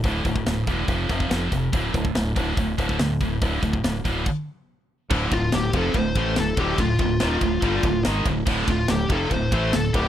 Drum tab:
CC |----------------|----------------|--------x-------|x---------------|
RD |----------------|----------------|----------------|--x-x-x-x-x-x-x-|
HH |o-o-o-o-o-o-o-o-|o-o-o-o-o-o-o-o-|o-o-o-o---------|----------------|
SD |----o-------o---|----o-------o---|----o-----------|----o-------o---|
BD |o-oo--o-o-oo--o-|o-oo--o-o-oo--o-|o-oo--o-o-------|o-o---o-o-o---o-|

CC |----------------|x---------------|
RD |x-x-x-x-x-x-x-x-|--x-x-x-x-x-x-x-|
HH |----------------|----------------|
SD |----o-------o---|----o-------o---|
BD |o-o---o-o-o---o-|o-o---o-o-o---o-|